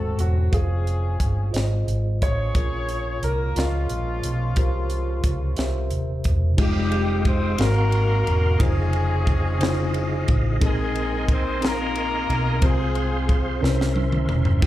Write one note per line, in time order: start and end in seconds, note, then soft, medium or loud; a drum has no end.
0.00 0.17 D#1 medium
0.00 0.50 G#2 soft
0.00 0.40 G#3 soft
0.00 0.20 A3 medium
0.00 0.50 C4 soft
0.00 0.20 F#4 soft
0.00 0.40 F#4 soft
0.00 0.20 A4 medium
0.00 0.22 A4 medium
0.00 0.41 A4 soft
0.00 0.41 C5 medium
0.19 0.50 E1 medium
0.19 0.52 F#3 soft
0.19 0.55 F#4 medium
0.19 0.52 F#4 medium
0.19 closed hi-hat soft
0.52 1.17 F1 medium
0.52 1.55 G#3 medium
0.52 1.41 F4 medium
0.52 1.41 G#4 medium
0.52 1.51 G#4 medium
0.52 1.55 G#4 medium
0.52 1.41 C5 soft
0.52 1.41 F5 medium
0.52 kick medium
0.52 closed hi-hat medium
0.56 1.52 C4 soft
0.56 1.52 C#4 soft
0.87 closed hi-hat soft
1.20 1.52 G1 medium
1.20 kick medium
1.20 closed hi-hat medium
1.51 1.85 G#1 medium
1.51 2.41 F4 medium
1.51 2.41 G#4 medium
1.51 2.42 C5 medium
1.51 2.42 D#5 medium
1.51 closed hi-hat medium
1.56 snare medium
1.87 2.19 G#1 medium
1.87 closed hi-hat soft
2.22 2.53 A1 medium
2.22 3.21 C#4 medium
2.22 3.20 F4 medium
2.22 3.20 G#4 medium
2.22 3.26 C#5 medium
2.22 3.21 C#5 medium
2.22 kick medium
2.22 closed hi-hat medium
2.54 3.18 A#1 medium
2.54 3.52 A#2 soft
2.54 3.43 F4 medium
2.54 3.43 G#4 medium
2.54 3.44 A#4 medium
2.54 3.44 C#5 medium
2.54 kick medium
2.54 closed hi-hat medium
2.89 closed hi-hat soft
3.23 3.54 C2 medium
3.23 3.58 A#3 medium
3.23 3.55 A#4 medium
3.23 3.58 A#4 medium
3.23 closed hi-hat soft
3.56 3.87 C#2 medium
3.56 5.89 C#4 soft
3.56 4.44 F4 soft
3.56 5.88 F4 medium
3.56 4.44 G#4 soft
3.56 4.45 A#4 soft
3.56 4.45 D#5 medium
3.56 snare medium
3.56 closed hi-hat medium
3.60 5.94 F3 medium
3.60 5.90 G#3 soft
3.60 5.94 F4 medium
3.89 4.21 A#1 medium
3.89 closed hi-hat soft
4.23 4.55 B1 medium
4.23 closed hi-hat medium
4.56 5.20 C2 medium
4.56 5.54 C3 medium
4.56 5.45 F4 medium
4.56 5.45 G4 medium
4.56 5.46 A#4 medium
4.56 5.46 C5 medium
4.56 kick medium
4.56 closed hi-hat medium
4.90 closed hi-hat soft
5.24 5.55 C#2 medium
5.24 kick medium
5.24 closed hi-hat medium
5.57 5.89 C2 medium
5.57 6.55 C3 medium
5.57 6.46 G4 medium
5.57 6.46 A#4 medium
5.57 6.47 C5 medium
5.57 6.46 E5 medium
5.57 snare medium
5.57 closed hi-hat medium
5.91 6.22 D#1 medium
5.91 closed hi-hat soft
6.24 6.56 E1 medium
6.24 kick medium
6.24 closed hi-hat soft
6.57 7.55 F1 medium
6.57 7.23 G3 medium
6.57 7.58 G#3 medium
6.57 7.47 G#3 medium
6.57 7.46 D#4 medium
6.57 7.57 D#4 medium
6.57 7.46 F4 medium
6.57 7.47 G4 medium
6.57 7.23 G4 medium
6.57 10.57 F5 medium
6.57 7.58 G5 medium
6.57 7.58 D#6 medium
6.57 kick loud
6.57 crash loud
6.61 7.27 C4 medium
6.92 ride bell soft
7.25 7.60 C4 medium
7.25 7.60 C5 medium
7.25 kick medium
7.25 ride bell soft
7.58 8.22 G#1 medium
7.58 8.56 G#2 medium
7.58 8.61 A#3 medium
7.58 8.47 C4 medium
7.58 8.57 D#4 medium
7.58 8.47 F#4 medium
7.58 8.59 F#4 medium
7.58 8.57 F#4 medium
7.58 7.66 G#4 medium
7.58 8.59 A#4 medium
7.58 8.61 A#4 loud
7.58 8.47 F5 medium
7.58 8.60 C6 medium
7.58 snare medium
7.58 ride bell medium
7.67 8.51 A#4 medium
7.92 ride bell soft
8.27 8.58 E1 medium
8.27 ride bell soft
8.58 10.24 F1 medium
8.58 9.47 C#3 medium
8.58 9.48 D#4 medium
8.58 9.48 F4 medium
8.58 10.58 G#4 medium
8.58 9.48 C5 medium
8.58 12.57 D#5 medium
8.58 kick loud
8.58 ride bell medium
8.62 10.29 G#3 medium
8.62 10.25 C4 medium
8.62 10.25 C#4 medium
8.62 10.29 G#4 medium
8.93 ride bell soft
9.27 kick medium
9.27 ride bell soft
9.59 10.47 C#3 medium
9.59 10.48 D#4 medium
9.59 9.67 E4 medium
9.59 10.48 C5 medium
9.59 ride bell medium
9.63 10.52 F4 medium
9.63 snare medium
9.94 ride bell soft
10.28 10.59 A1 loud
10.28 kick medium
10.28 ride bell soft
10.60 12.25 A#1 loud
10.60 11.58 A#2 medium
10.60 11.48 C4 medium
10.60 11.49 D#4 medium
10.60 11.59 D#4 medium
10.60 11.50 G#4 medium
10.60 10.69 A4 medium
10.60 12.60 A#4 medium
10.60 12.60 G#5 medium
10.60 12.60 C6 medium
10.60 kick loud
10.60 ride bell medium
10.64 11.26 G#3 medium
10.64 11.32 C4 medium
10.64 11.26 G#4 medium
10.69 11.53 A#4 medium
10.95 ride bell soft
11.28 11.64 C4 medium
11.28 11.64 C5 medium
11.28 kick medium
11.28 ride bell soft
11.61 12.49 C4 medium
11.61 12.49 D#4 medium
11.61 12.49 G#4 medium
11.61 12.50 A#4 medium
11.61 snare medium
11.61 ride bell medium
11.65 12.64 A#3 medium
11.65 12.60 D#4 medium
11.65 12.60 F4 medium
11.65 12.64 A#4 loud
11.95 ride bell soft
12.30 12.60 B1 loud
12.30 ride bell soft
12.61 13.59 C2 loud
12.61 13.58 C3 medium
12.61 13.49 C4 medium
12.61 13.59 C4 medium
12.61 13.50 F4 medium
12.61 13.59 F4 medium
12.61 12.69 G4 medium
12.61 13.61 G#4 medium
12.61 13.61 C5 medium
12.61 13.50 C5 medium
12.61 13.61 F5 medium
12.61 14.61 C6 medium
12.61 kick loud
12.61 ride bell medium
12.66 13.39 G#3 medium
12.66 13.39 G#4 medium
12.66 13.53 G#4 medium
12.95 ride bell soft
13.29 kick medium
13.29 ride bell soft
13.61 14.25 C2 loud
13.61 14.59 C3 medium
13.61 14.49 C#4 medium
13.61 14.62 C#4 medium
13.61 14.50 E4 medium
13.61 14.62 A#4 medium
13.61 14.50 A#4 medium
13.61 13.69 B4 medium
13.61 14.62 E5 medium
13.61 snare medium
13.70 14.54 C5 medium
13.81 snare medium
13.96 high tom medium
14.12 mid tom medium
14.29 14.60 E1 loud
14.29 mid tom medium
14.45 floor tom medium
14.61 14.67 F1 medium
14.61 14.67 G#3 medium
14.61 14.67 D#4 medium
14.61 14.67 F4 medium
14.61 14.67 G4 medium
14.61 14.67 F5 medium
14.61 14.67 G5 medium
14.61 14.67 D#6 medium
14.61 kick loud
14.61 crash medium